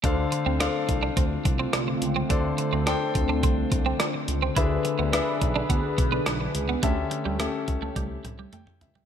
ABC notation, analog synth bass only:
X:1
M:4/4
L:1/16
Q:1/4=106
K:Ddor
V:1 name="Analog synth bass" clef=bass
D,,2 z D,,2 z C,,2 D,,2 C,,2 C,,2 ^C,,2 | D,,2 z D,,2 z D,,2 C,,2 C,,2 z2 ^C,,2 | D,,2 z D,,2 z B,,,2 D,,2 B,,,2 B,,,2 ^C,,2 | D,,2 z D,,2 z ^C,,2 =C,,2 C,,2 z2 ^C,,2 |]